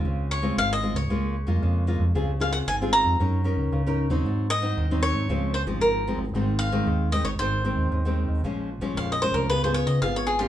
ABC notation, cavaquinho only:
X:1
M:4/4
L:1/16
Q:1/4=114
K:Abmix
V:1 name="Cavaquinho"
z2 d2 f e2 d6- d z2 | z2 f g a2 b8 z2 | z2 e4 d4 c2 B3 z | z2 f4 e d c6 z2 |
[K:Bbm] z4 f e c B _c =c d e f d A F |]